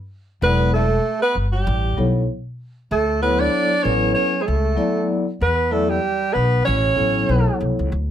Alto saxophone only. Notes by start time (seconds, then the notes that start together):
0.43 B4
0.73 A4
1.22 B4
1.52 G4
2.92 A4
3.22 B4
3.40 D5
3.83 C#5
4.14 C#5
4.41 G#4
4.46 A4
5.42 B4
5.72 A4
5.90 G4
6.33 B4
6.65 C#5